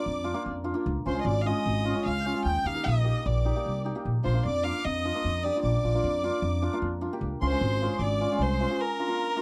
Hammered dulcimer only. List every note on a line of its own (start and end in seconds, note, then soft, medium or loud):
0.24 0.30 D4 medium
0.24 0.30 F4 medium
0.34 0.45 A#3 medium
0.34 0.45 D4 medium
0.34 0.45 F4 medium
0.64 0.70 D4 medium
0.64 0.70 F4 medium
0.74 0.85 A#3 medium
0.74 0.85 D4 medium
0.74 0.86 F4 medium
1.06 1.11 C#4 medium
1.06 1.11 F4 medium
1.15 1.45 G#3 medium
1.15 1.26 C#4 medium
1.15 1.26 F4 medium
1.45 1.93 G#3 medium
1.45 1.56 C#4 medium
1.45 1.56 F4 medium
1.85 1.91 C#4 medium
1.85 1.91 F4 medium
1.94 2.33 G#3 medium
1.94 2.06 C#4 medium
1.94 2.06 F4 medium
2.26 2.31 C#4 medium
2.26 2.31 F4 medium
2.34 2.51 G#3 medium
2.34 2.45 C#4 medium
2.34 2.45 F4 medium
2.65 2.70 D#4 medium
2.65 2.71 G4 medium
2.74 2.85 A#3 medium
2.74 2.85 D#4 medium
2.74 2.86 G4 medium
3.04 3.15 A#3 medium
3.04 3.15 D#4 medium
3.04 3.15 G4 medium
3.45 3.50 D#4 medium
3.45 3.51 G4 medium
3.56 3.66 A#3 medium
3.56 3.66 D#4 medium
3.56 3.66 G4 medium
3.85 3.90 D#4 medium
3.85 3.91 G4 medium
3.95 4.05 A#3 medium
3.95 4.06 D#4 medium
3.95 4.06 G4 medium
4.23 4.29 D4 medium
4.23 4.30 F4 medium
4.34 4.45 A#3 medium
4.34 4.44 D4 medium
4.34 4.45 F4 medium
4.63 4.74 A#3 medium
4.63 4.74 D4 medium
4.63 4.74 F4 medium
5.05 5.10 D4 medium
5.05 5.10 F4 medium
5.15 5.25 A#3 medium
5.15 5.25 D4 soft
5.15 5.25 F4 medium
5.44 5.49 D4 medium
5.44 5.50 G4 medium
5.55 5.65 A#3 medium
5.55 5.65 D4 soft
5.55 5.65 F4 medium
5.84 5.89 D4 medium
5.84 5.89 F4 medium
5.94 6.04 A#3 medium
5.94 6.04 D4 medium
5.94 6.04 F4 medium
6.23 6.33 A#3 medium
6.23 6.34 D4 medium
6.23 6.33 F4 medium
6.62 6.67 D4 medium
6.62 6.68 F4 medium
6.73 6.83 A#3 medium
6.73 6.83 D4 medium
6.73 6.83 F4 medium
7.01 7.07 D4 medium
7.01 7.07 F4 medium
7.13 7.22 A#3 medium
7.13 7.22 D4 medium
7.13 7.22 G4 medium
7.41 7.46 C#4 medium
7.41 7.47 F4 medium
7.52 7.81 G#3 medium
7.52 7.62 C#4 medium
7.52 7.62 F4 medium
7.82 8.31 G#3 medium
7.82 7.91 C#4 medium
7.82 7.91 F4 medium
8.20 8.25 C#4 medium
8.20 8.26 F4 medium
8.32 8.69 G#3 medium
8.32 8.41 C#4 medium
8.32 8.41 F4 medium
8.60 8.64 C#4 medium
8.60 8.65 F4 medium
8.70 8.85 G#3 medium
8.70 8.79 C#4 soft
8.70 8.79 F4 medium
8.99 9.04 D4 medium
8.99 9.04 F4 medium
9.08 9.18 A#3 medium
9.08 9.18 D4 soft
9.08 9.18 F4 medium
9.36 9.42 A#3 medium
9.36 9.42 D4 medium
9.36 9.42 F4 medium